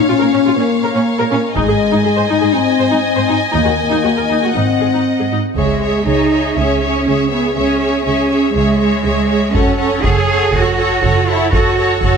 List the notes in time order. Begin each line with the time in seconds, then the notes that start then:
Already playing: C#5 F5
0.05 C#4 F4
0.10 A#2
0.20 A#2 A#4
0.33 A#2 C#4
0.45 A#2 F4
0.56 A#2 A#3 C#4
0.82 A#2 A#4
0.94 A#2 C#4
1.18 A#2 A#4
1.31 A#2 C#4
1.55 G#1 G#2 G#3 D#4 D#5 G#5, taiko
1.68 G#2 G#4
1.91 G#2 D#4
2.04 G#2 G#4
2.16 G#2 C5
2.29 G#2 D#4
2.41 G#2 G#4
2.52 G#2 C4 D#4
2.79 G#2 C5
2.90 G#2 D#4
3.02 C4
3.15 G#2 C5
3.28 G#2 D#4
3.52 D#2 A#3 D#4
3.65 D#2 F#4
3.77 A#3
3.90 D#2 D#4
4.04 D#2 F#4
4.17 D#2 A#4
4.29 D#2 D#4
4.43 D#2 F#4
4.54 G#1 G#2 C4 D#4 F#5
4.80 G#2 G#4
4.93 G#2 D#4
5.19 G#2 G#4
5.32 G#2 D#4
5.56 C#2 G#3 G#4 C#5 E5, taiko
5.81 G#4 C#5 E5
6.06 C#2 D#4 G#4 C#5 E5
6.32 G#4 C#5 E5
6.55 C#2 C#4 G#4 C#5 E5
6.82 G#4 C#5 E5
7.06 C#2 G#4 C#5 E5
7.30 B3 G#4 C#5 E5
7.55 C#2 C#4 G#4 C#5 E5
7.79 G#4 C#5 E5
8.05 C#2 C#4 G#4 C#5 E5
8.30 G#4 C#5 E5
8.54 C#2 G#3 G#4 C#5 E5
8.79 G#4 C#5 E5
9.02 C#2 G#4 C#5 E5
9.29 G#4 C#5 E5
9.53 F#1 C#4 F#4 A4 C#5 F#5, taiko
9.78 A4 C#5 F#5
10.01 F#1 G#4 A4 C#5 F#5, taiko
10.27 A4 C#5 F#5
10.52 F#1 F#4 A4 C#5 F#5, taiko
10.77 A4 C#5 F#5
11.01 F#1 A4 C#5 F#5, taiko
11.25 E4 A4 F#5
11.30 C#5
11.52 F#1 F#4 A4 C#5 F#5, taiko
11.77 A4 C#5 F#5
12.01 F#1 F#4 A4 C#5 F#5, taiko